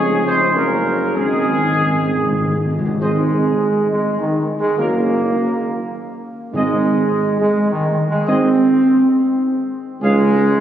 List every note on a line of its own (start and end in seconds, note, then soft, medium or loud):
0.00 0.57 F1 medium
0.00 1.13 C#3 medium
0.00 0.23 G#3 medium
0.00 1.17 C#4 medium
0.00 0.23 G#4 loud
0.27 0.57 C4 medium
0.27 0.54 C5 medium
0.56 1.19 F#1 medium
0.56 1.13 A#3 medium
0.56 1.17 A#4 medium
1.16 2.70 G#1 medium
1.16 1.23 G#2 soft
1.16 2.70 D#3 medium
1.16 2.67 G#3 medium
1.16 2.66 C4 medium
1.16 2.70 G#4 medium
1.25 1.31 G#2 soft
1.32 1.39 G#2 soft
1.40 1.47 G#2 soft
1.48 1.55 G#2 soft
1.57 1.63 G#2 soft
1.64 1.70 G#2 soft
1.71 1.78 G#2 soft
1.79 1.85 G#2 soft
1.87 1.93 G#2 medium
1.94 2.00 G#2 soft
2.01 2.09 G#2 medium
2.10 2.16 G#2 medium
2.17 2.23 G#2 medium
2.24 2.31 G#2 medium
2.32 2.38 G#2 medium
2.40 2.46 G#2 medium
2.47 2.53 G#2 medium
2.55 2.61 G#2 medium
2.63 2.69 G#2 medium
2.70 2.77 G#2 medium
2.79 2.85 G#2 medium
2.86 2.94 G#2 medium
3.00 3.50 G#1 medium
3.00 3.86 G#3 medium
3.00 3.22 C4 medium
3.00 3.22 D#4 medium
3.00 3.22 C5 medium
3.00 3.22 D#5 medium
3.91 4.18 G#3 medium
4.19 4.38 D#3 medium
4.40 4.49 D#3 medium
4.60 4.78 G#3 medium
4.77 5.27 F#1 medium
4.77 6.20 A#3 medium
4.77 4.98 C#4 medium
4.77 4.98 F#4 medium
4.77 4.99 A#4 medium
6.53 7.02 G#1 medium
6.53 7.37 G#2 medium
6.53 7.36 G#3 medium
6.53 6.74 C4 medium
6.53 6.74 D#4 medium
6.53 6.75 G#4 medium
6.53 6.75 D#5 medium
7.41 7.68 G#3 medium
7.70 7.88 D#3 medium
7.89 7.98 D#3 medium
8.09 8.27 G#3 medium
8.27 8.76 G#1 medium
8.27 8.47 C4 medium
8.27 9.69 C4 loud
8.27 8.48 D#4 medium
8.27 8.48 G#4 medium
8.27 8.48 D#5 medium
10.01 10.50 C#2 loud
10.01 10.60 G#3 loud
10.01 10.22 C#4 medium
10.01 10.22 D#4 medium
10.01 10.22 G#4 medium
10.01 10.22 F5 medium